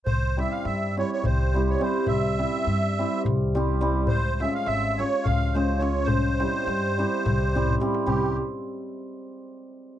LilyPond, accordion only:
\new Staff \with { instrumentName = "Accordion" } { \time 7/8 \tempo 4 = 105 c''8 e''16 f''16 e''8 des''16 des''16 c''8. des''16 c''8 | e''2 r4. | c''8 e''16 f''16 e''8 des''8 f''8 c''8 des''8 | c''2. r8 |
g'8 r2. | }